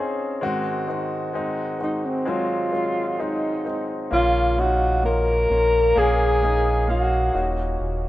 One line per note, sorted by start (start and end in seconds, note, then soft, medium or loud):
0.00 0.39 C4 medium
0.00 0.45 C#4 medium
0.00 0.44 D#4 medium
0.00 0.44 F4 medium
0.00 0.44 G#4 medium
0.00 0.44 C5 medium
0.41 1.76 G#2 medium
0.41 1.76 D#3 medium
0.41 0.85 G#3 medium
0.41 0.86 C4 medium
0.41 0.86 F#4 loud
0.87 1.31 G#3 medium
0.87 1.32 C4 medium
0.87 1.32 D#4 medium
1.33 1.77 G#3 medium
1.33 1.78 C4 medium
1.33 1.78 D#4 medium
1.79 2.23 G#3 medium
1.79 2.24 C4 soft
1.79 2.07 D#4 medium
1.79 2.24 F#4 medium
2.05 2.30 C4 medium
2.25 2.71 F#3 medium
2.25 2.70 G#3 medium
2.25 2.70 C4 medium
2.25 3.23 F4 medium
2.71 3.17 F#3 medium
2.71 3.16 G#3 medium
2.71 3.17 C4 medium
3.18 3.63 G#3 medium
3.18 3.63 C4 medium
3.18 3.63 D#4 medium
3.18 3.90 D#4 medium
3.64 4.09 G#3 soft
3.64 4.09 C4 soft
3.64 4.10 D#4 medium
4.11 5.47 A#1 medium
4.11 5.46 A#2 soft
4.11 5.47 C#3 soft
4.11 4.55 A#3 medium
4.11 4.56 C#4 medium
4.11 4.56 F4 medium
4.11 4.61 F4 medium
4.57 5.01 A#3 medium
4.57 5.02 C#4 soft
4.57 5.02 D#4 medium
4.57 5.05 F#4 medium
5.03 5.48 A#3 medium
5.03 5.48 C#4 medium
5.03 5.49 F4 medium
5.03 6.00 A#4 medium
5.50 5.94 A#1 medium
5.50 5.94 A#3 medium
5.50 5.95 C#4 soft
5.50 5.95 F4 medium
5.96 7.31 A#1 medium
5.96 6.40 A#3 medium
5.96 6.40 C#4 medium
5.96 6.41 G#4 medium
5.96 6.89 G#4 medium
6.42 6.86 A#3 medium
6.42 6.87 C#4 medium
6.42 6.87 D#4 medium
6.88 7.32 A#3 medium
6.88 7.32 C#4 soft
6.88 7.54 F#4 medium
6.88 7.33 F5 medium
7.34 7.77 D#1 medium
7.34 8.09 A#2 soft
7.34 8.09 C#4 medium
7.34 8.09 D#4 medium
7.34 8.09 F#4 medium
7.80 8.09 D#1 medium